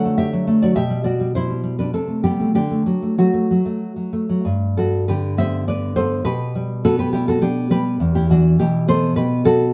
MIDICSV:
0, 0, Header, 1, 2, 480
1, 0, Start_track
1, 0, Key_signature, 1, "major"
1, 0, Tempo, 581959
1, 623, Time_signature, 3, 2, 24, 8
1, 1594, Tempo, 628931
1, 3514, Tempo, 609756
1, 4474, Tempo, 583090
1, 7820, End_track
2, 0, Start_track
2, 0, Title_t, "Nylon-string guitar"
2, 0, Program_c, 0, 24
2, 0, Note_on_c, 0, 50, 61
2, 0, Note_on_c, 0, 54, 48
2, 0, Note_on_c, 0, 69, 56
2, 0, Note_on_c, 0, 78, 73
2, 45, Note_on_c, 0, 57, 42
2, 143, Note_off_c, 0, 78, 0
2, 144, Note_off_c, 0, 69, 0
2, 146, Note_on_c, 0, 76, 79
2, 154, Note_on_c, 0, 67, 60
2, 263, Note_off_c, 0, 54, 0
2, 273, Note_on_c, 0, 54, 42
2, 380, Note_off_c, 0, 57, 0
2, 390, Note_on_c, 0, 57, 50
2, 482, Note_off_c, 0, 67, 0
2, 488, Note_off_c, 0, 76, 0
2, 502, Note_off_c, 0, 54, 0
2, 512, Note_on_c, 0, 54, 39
2, 516, Note_on_c, 0, 74, 76
2, 524, Note_on_c, 0, 66, 60
2, 585, Note_off_c, 0, 50, 0
2, 617, Note_off_c, 0, 54, 0
2, 620, Note_on_c, 0, 47, 56
2, 625, Note_off_c, 0, 57, 0
2, 625, Note_off_c, 0, 66, 0
2, 625, Note_on_c, 0, 76, 96
2, 628, Note_off_c, 0, 74, 0
2, 634, Note_on_c, 0, 67, 74
2, 743, Note_on_c, 0, 55, 52
2, 851, Note_off_c, 0, 67, 0
2, 852, Note_off_c, 0, 55, 0
2, 852, Note_off_c, 0, 76, 0
2, 858, Note_on_c, 0, 74, 65
2, 862, Note_on_c, 0, 55, 38
2, 869, Note_on_c, 0, 66, 52
2, 980, Note_off_c, 0, 55, 0
2, 990, Note_on_c, 0, 55, 39
2, 1090, Note_off_c, 0, 66, 0
2, 1092, Note_off_c, 0, 74, 0
2, 1103, Note_off_c, 0, 55, 0
2, 1112, Note_on_c, 0, 55, 49
2, 1115, Note_on_c, 0, 72, 83
2, 1124, Note_on_c, 0, 64, 67
2, 1226, Note_off_c, 0, 55, 0
2, 1235, Note_on_c, 0, 55, 42
2, 1339, Note_off_c, 0, 55, 0
2, 1349, Note_on_c, 0, 55, 42
2, 1455, Note_off_c, 0, 64, 0
2, 1460, Note_off_c, 0, 72, 0
2, 1462, Note_off_c, 0, 55, 0
2, 1471, Note_on_c, 0, 55, 38
2, 1475, Note_on_c, 0, 71, 70
2, 1484, Note_on_c, 0, 62, 51
2, 1564, Note_off_c, 0, 47, 0
2, 1592, Note_off_c, 0, 62, 0
2, 1594, Note_off_c, 0, 55, 0
2, 1596, Note_off_c, 0, 71, 0
2, 1596, Note_on_c, 0, 48, 47
2, 1599, Note_on_c, 0, 69, 64
2, 1605, Note_on_c, 0, 60, 47
2, 1706, Note_on_c, 0, 57, 35
2, 1813, Note_off_c, 0, 60, 0
2, 1816, Note_off_c, 0, 69, 0
2, 1826, Note_on_c, 0, 55, 46
2, 1826, Note_on_c, 0, 67, 75
2, 1834, Note_on_c, 0, 59, 55
2, 1939, Note_off_c, 0, 57, 0
2, 1948, Note_on_c, 0, 57, 39
2, 2047, Note_off_c, 0, 48, 0
2, 2048, Note_off_c, 0, 59, 0
2, 2051, Note_off_c, 0, 67, 0
2, 2059, Note_off_c, 0, 55, 0
2, 2062, Note_on_c, 0, 50, 47
2, 2063, Note_off_c, 0, 57, 0
2, 2067, Note_on_c, 0, 67, 77
2, 2070, Note_on_c, 0, 62, 55
2, 2185, Note_on_c, 0, 57, 41
2, 2300, Note_off_c, 0, 50, 0
2, 2303, Note_on_c, 0, 54, 41
2, 2418, Note_off_c, 0, 57, 0
2, 2427, Note_on_c, 0, 57, 40
2, 2525, Note_off_c, 0, 62, 0
2, 2534, Note_off_c, 0, 67, 0
2, 2537, Note_off_c, 0, 54, 0
2, 2546, Note_off_c, 0, 57, 0
2, 2546, Note_on_c, 0, 54, 46
2, 2551, Note_on_c, 0, 66, 67
2, 2555, Note_on_c, 0, 57, 43
2, 2656, Note_off_c, 0, 57, 0
2, 2665, Note_on_c, 0, 57, 40
2, 2787, Note_off_c, 0, 54, 0
2, 2796, Note_on_c, 0, 54, 41
2, 2900, Note_off_c, 0, 57, 0
2, 2909, Note_on_c, 0, 57, 39
2, 3134, Note_off_c, 0, 54, 0
2, 3143, Note_on_c, 0, 54, 33
2, 3242, Note_off_c, 0, 66, 0
2, 3261, Note_off_c, 0, 57, 0
2, 3270, Note_on_c, 0, 57, 37
2, 3387, Note_off_c, 0, 54, 0
2, 3396, Note_on_c, 0, 54, 38
2, 3514, Note_off_c, 0, 57, 0
2, 3515, Note_on_c, 0, 43, 55
2, 3516, Note_off_c, 0, 54, 0
2, 3767, Note_on_c, 0, 55, 39
2, 3770, Note_on_c, 0, 69, 74
2, 3779, Note_on_c, 0, 66, 61
2, 3997, Note_off_c, 0, 66, 0
2, 3999, Note_off_c, 0, 69, 0
2, 4012, Note_on_c, 0, 71, 76
2, 4016, Note_on_c, 0, 50, 53
2, 4024, Note_on_c, 0, 67, 65
2, 4236, Note_off_c, 0, 67, 0
2, 4236, Note_off_c, 0, 71, 0
2, 4246, Note_on_c, 0, 59, 44
2, 4250, Note_on_c, 0, 76, 91
2, 4257, Note_on_c, 0, 72, 75
2, 4467, Note_off_c, 0, 72, 0
2, 4470, Note_off_c, 0, 76, 0
2, 4471, Note_off_c, 0, 50, 0
2, 4478, Note_off_c, 0, 55, 0
2, 4480, Note_on_c, 0, 50, 42
2, 4483, Note_on_c, 0, 74, 69
2, 4495, Note_on_c, 0, 71, 56
2, 4706, Note_off_c, 0, 59, 0
2, 4709, Note_off_c, 0, 71, 0
2, 4710, Note_off_c, 0, 74, 0
2, 4714, Note_on_c, 0, 72, 93
2, 4716, Note_on_c, 0, 59, 55
2, 4723, Note_on_c, 0, 69, 67
2, 4928, Note_off_c, 0, 43, 0
2, 4947, Note_off_c, 0, 69, 0
2, 4949, Note_on_c, 0, 47, 60
2, 4950, Note_off_c, 0, 72, 0
2, 4951, Note_on_c, 0, 71, 88
2, 4961, Note_off_c, 0, 59, 0
2, 4963, Note_off_c, 0, 50, 0
2, 4964, Note_on_c, 0, 67, 71
2, 5202, Note_on_c, 0, 55, 52
2, 5420, Note_off_c, 0, 67, 0
2, 5425, Note_off_c, 0, 71, 0
2, 5445, Note_on_c, 0, 59, 62
2, 5445, Note_on_c, 0, 69, 107
2, 5452, Note_on_c, 0, 66, 82
2, 5558, Note_off_c, 0, 69, 0
2, 5562, Note_on_c, 0, 71, 91
2, 5564, Note_off_c, 0, 66, 0
2, 5570, Note_on_c, 0, 67, 57
2, 5665, Note_off_c, 0, 67, 0
2, 5672, Note_off_c, 0, 55, 0
2, 5675, Note_on_c, 0, 67, 85
2, 5681, Note_on_c, 0, 55, 49
2, 5684, Note_off_c, 0, 71, 0
2, 5687, Note_on_c, 0, 64, 69
2, 5798, Note_off_c, 0, 64, 0
2, 5801, Note_on_c, 0, 69, 80
2, 5805, Note_off_c, 0, 67, 0
2, 5811, Note_on_c, 0, 66, 71
2, 5901, Note_off_c, 0, 59, 0
2, 5910, Note_on_c, 0, 59, 49
2, 5913, Note_off_c, 0, 66, 0
2, 5916, Note_on_c, 0, 67, 82
2, 5917, Note_off_c, 0, 55, 0
2, 5920, Note_on_c, 0, 62, 61
2, 5928, Note_off_c, 0, 69, 0
2, 6145, Note_off_c, 0, 62, 0
2, 6148, Note_off_c, 0, 67, 0
2, 6148, Note_on_c, 0, 55, 58
2, 6154, Note_on_c, 0, 71, 104
2, 6158, Note_on_c, 0, 67, 73
2, 6378, Note_off_c, 0, 47, 0
2, 6395, Note_on_c, 0, 40, 70
2, 6403, Note_off_c, 0, 55, 0
2, 6404, Note_off_c, 0, 59, 0
2, 6503, Note_off_c, 0, 67, 0
2, 6511, Note_off_c, 0, 71, 0
2, 6518, Note_on_c, 0, 67, 96
2, 6525, Note_on_c, 0, 64, 65
2, 6640, Note_on_c, 0, 52, 55
2, 6643, Note_off_c, 0, 64, 0
2, 6644, Note_off_c, 0, 67, 0
2, 6647, Note_on_c, 0, 66, 87
2, 6656, Note_on_c, 0, 62, 62
2, 6878, Note_off_c, 0, 62, 0
2, 6880, Note_off_c, 0, 66, 0
2, 6884, Note_off_c, 0, 40, 0
2, 6884, Note_on_c, 0, 67, 91
2, 6887, Note_on_c, 0, 47, 61
2, 6899, Note_on_c, 0, 64, 71
2, 7113, Note_off_c, 0, 67, 0
2, 7114, Note_off_c, 0, 64, 0
2, 7118, Note_on_c, 0, 59, 60
2, 7123, Note_on_c, 0, 72, 98
2, 7129, Note_on_c, 0, 69, 67
2, 7339, Note_off_c, 0, 47, 0
2, 7347, Note_off_c, 0, 69, 0
2, 7347, Note_off_c, 0, 72, 0
2, 7348, Note_on_c, 0, 47, 52
2, 7350, Note_on_c, 0, 71, 89
2, 7354, Note_off_c, 0, 52, 0
2, 7363, Note_on_c, 0, 67, 60
2, 7576, Note_off_c, 0, 59, 0
2, 7582, Note_off_c, 0, 71, 0
2, 7583, Note_off_c, 0, 67, 0
2, 7585, Note_on_c, 0, 59, 63
2, 7590, Note_on_c, 0, 69, 107
2, 7596, Note_on_c, 0, 66, 81
2, 7817, Note_off_c, 0, 66, 0
2, 7820, Note_off_c, 0, 47, 0
2, 7820, Note_off_c, 0, 59, 0
2, 7820, Note_off_c, 0, 69, 0
2, 7820, End_track
0, 0, End_of_file